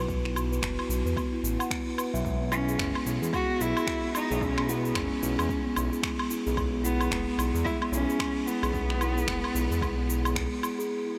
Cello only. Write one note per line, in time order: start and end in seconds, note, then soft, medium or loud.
2.52 3.02 C#4 loud
3.34 3.62 F#4 loud
3.61 4.15 E4 loud
4.15 4.44 D#4 medium
4.42 4.71 C#4 loud
4.69 4.99 B3 medium
4.97 6.04 C#4 medium
6.84 7.34 B3 loud
7.64 7.77 E4 loud
7.92 8.48 C#4 loud
8.47 10.36 B3 medium